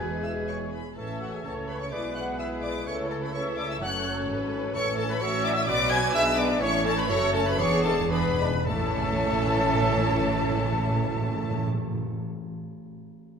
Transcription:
Already playing: clarinet B4, flute G#5, oboe G#5
0.00 double bass section E1, timpani E2, cello section E2, bassoon B2, viola section E3 G#4, french horn section G#3, violin section G#4 B4
0.22 flute E5, trumpet E5, violin section E6
0.47 flute C#5, trumpet C#5, violin section C#6
0.72 flute B4, trumpet B4, violin section B5
0.97 double bass section A1, cello section A2, bassoon E3, french horn section A3 C#4, violin section C#4 A4 A5, flute A4, clarinet A4, trumpet A4, oboe C#5, viola section E5
1.21 flute F#4, trumpet F#4, violin section F#5
1.34 trumpet G#4, flute G#4, violin section G#5
1.44 double bass section C#2, cello section C#3, bassoon E3, violin section C#4 A4 A5, clarinet A4, trumpet A4, flute A4, oboe C#5, viola section C#5
1.68 trumpet B4, flute B4, violin section B5
1.81 trumpet C#5, flute C#5, violin section C#6
1.92 double bass section B1, cello section B2, bassoon E3, french horn section G#3 E4, violin section E4 G#4 D6, clarinet G#4, oboe B4, viola section B4, trumpet D5, flute D5
2.15 flute F#5, trumpet F#5, violin section F#6
2.38 bassoon E3, violin section E4 G#4 E6, clarinet G#4, oboe B4, trumpet E5, flute E5
2.63 flute D5, trumpet D5, violin section D6
2.87 double bass section C#2, cello section C#3, bassoon E3, french horn section A3, violin section E4 A4 C#6, clarinet A4, viola section A4, flute C#5, trumpet C#5, oboe C#5
3.10 trumpet A4, flute A4, violin section A5
3.22 trumpet B4, flute B4, violin section B5
3.34 bassoon E3, violin section E4 A4 C#6, clarinet A4, oboe C#5, trumpet C#5, flute C#5, viola section E5
3.58 trumpet D5, flute D5, violin section D6
3.69 trumpet E5, flute E5, violin section E6
3.81 double bass section F#1, cello section F#2, bassoon F#3, french horn section C#4, violin section C#4 A4 F#6, clarinet A4, oboe C#5, viola section C#5, trumpet F#5, flute F#5
4.29 double bass section G#1, cello section G#2, viola section B4
4.74 double bass section A1, timpani A2, cello section A2, bassoon E3, violin section C#4 A4 C#6, clarinet A4, viola section A4, oboe C#5, flute C#5, trumpet C#5
4.97 french horn section A3 C#4, flute A4, trumpet A4, violin section A5
5.10 trumpet B4, flute B4, violin section B5
5.21 double bass section A1, cello section A2, bassoon F#3, violin section C#4 F#4 C#6, clarinet F#4, oboe C#5, trumpet C#5, flute C#5, viola section E5
5.44 french horn section F#3 C#4, trumpet D5, flute D5, violin section D6
5.56 trumpet E5, flute E5, violin section E6
5.67 double bass section B1, cello section B2, bassoon F#3, violin section B3 F#4 D6, clarinet F#4, oboe B4, trumpet D5, viola section D5, flute D5
5.91 french horn section F#3 B3, trumpet G#5, flute G#5, violin section G#6
6.13 double bass section B1, cello section B2, bassoon G#3, violin section B3 G#4 E6, clarinet D4, oboe B4, viola section B4, trumpet E5, flute E5
6.38 french horn section G#3 B3, trumpet D5, flute D5, violin section D6
6.61 double bass section A1, cello section A2, bassoon A3, violin section C#4 A4 C#6, clarinet E4, viola section C#5, trumpet C#5, oboe C#5, flute C#5
6.85 french horn section A3 C#4, flute A4, trumpet A4, violin section A5
6.97 trumpet B4, flute B4, violin section B5
7.09 double bass section F#1, cello section F#2, bassoon A3, violin section C#4 A4 C#6, clarinet F#4, viola section A4, trumpet C#5, flute C#5, oboe C#5
7.34 french horn section A3 C#4, trumpet A4, flute A4, violin section A5
7.45 trumpet B4, flute B4, violin section B5
7.58 double bass section E1, timpani E2, cello section E2, bassoon B3, violin section D4 G#4 C#6, clarinet G#4, viola section G#4, trumpet C#5, flute C#5, oboe D5
7.68 timpani E2
7.76 timpani E2
7.84 timpani E2, french horn section G#3 D4, trumpet A4, flute A4, violin section A5
7.92 timpani E2
8.01 timpani E2
8.09 timpani E2, bassoon B3, violin section D4 G#4 B5, clarinet G#4, trumpet B4, viola section B4, flute B4, oboe D5
8.17 timpani E2
8.25 timpani E2
8.34 timpani E2
8.39 timpani E2, french horn section G#3 D4
8.51 timpani E2
8.65 double bass section A1, timpani A2, cello section A2, viola section E3 E4, french horn section A3 C#4, bassoon C#4, clarinet A4, trumpet A4, violin section A4 C#5 A5, oboe E5, flute A5
8.74 timpani A2
8.81 timpani A2
8.89 timpani A2
8.96 timpani A2
9.03 timpani A2
9.11 timpani A2
9.18 timpani A2
9.25 timpani A2
9.33 timpani A2
9.40 timpani A2
9.47 timpani A2
9.54 timpani A2
9.61 timpani A2
9.68 timpani A2
9.75 timpani A2
9.82 timpani A2
9.89 timpani A2
9.97 timpani A2
10.04 timpani A2
10.12 timpani A2
10.20 timpani A2
10.28 timpani A2
10.35 timpani A2
10.43 timpani A2
10.50 timpani A2
10.57 timpani A2
10.65 timpani A2
10.72 timpani A2
10.79 timpani A2
10.87 timpani A2
10.93 timpani A2
11.00 timpani A2
11.07 timpani A2
11.15 timpani A2
11.22 timpani A2
11.29 timpani A2
11.36 timpani A2
11.43 timpani A2
11.51 timpani A2
11.58 timpani A2
11.65 timpani A2
11.72 timpani A2
11.80 timpani A2
11.87 timpani A2
11.95 timpani A2
12.02 timpani A2

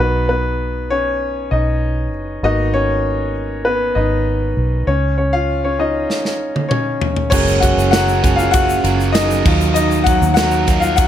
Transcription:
0.00 fingered electric bass B1, grand piano B3 D#4 F#4 B4
0.29 grand piano B3 B4
0.90 grand piano C#4 C#5
1.51 fingered electric bass B1, grand piano D#4 D#5
2.13 fingered electric bass F#1
2.43 fingered electric bass G#1, grand piano A#3 B3 D#4 F#4 D#5
2.74 grand piano C#4 C#5
3.65 grand piano B3 B4
3.95 fingered electric bass G#1, grand piano D#4 D#5
4.57 fingered electric bass B1
4.87 fingered electric bass C#2, grand piano C#4 C#5
5.18 grand piano C#4 C#5
5.33 grand piano F4 F5
5.64 grand piano C#4 C#5
5.79 grand piano C#4 D#4 F4 D#5
6.10 snare
6.25 snare
6.56 high tom
6.69 grand piano C#4 C#5, mid tom
7.01 floor tom
7.16 floor tom
7.30 fingered electric bass F#1, overdriven electric guitar F#3 C#4 G#4 A#4, grand piano G#3 A#3 C#4 F#4 C#5, kick, crash, shaker
7.47 shaker
7.60 grand piano F#4 F#5, kick, ride, shaker
7.78 fingered electric bass F#1, shaker
7.91 overdriven electric guitar F#3 C#4 G#4 A#4, grand piano F#4 F#5, snare, ride, shaker
8.08 shaker
8.23 grand piano G#3 A#3 F#4, overdriven electric guitar C#4 G#4 A#4, kick, ride, shaker
8.36 grand piano F4 F5, shaker
8.51 grand piano F#4 F#5, kick, ride, shaker
8.70 shaker
8.84 fingered electric bass F#1, overdriven electric guitar C#4 G#4 A#4, ride, shaker
9.01 shaker
9.12 overdriven electric guitar F#3 C#4 G#4, grand piano D#4 D#5, snare, ride, shaker
9.17 overdriven electric guitar A#4
9.31 shaker
9.45 fingered electric bass D#2, overdriven electric guitar D#3 F#3 D#4 F4 A#4, grand piano F#3 D#4 F4, kick, crash
9.61 shaker
9.74 grand piano D#4 D#5, ride, shaker
9.91 shaker
10.04 grand piano F#3 F#5, kick, ride, shaker
10.22 fingered electric bass D#2, shaker
10.34 overdriven electric guitar F#3 D#4 F4, grand piano F#3 F#5, snare, ride, shaker
10.38 overdriven electric guitar A#4
10.51 shaker
10.67 overdriven electric guitar D#4 F4 A#4, kick, ride, shaker
10.80 grand piano F4 F5, shaker
10.96 grand piano F#3 F#5, kick, ride, shaker

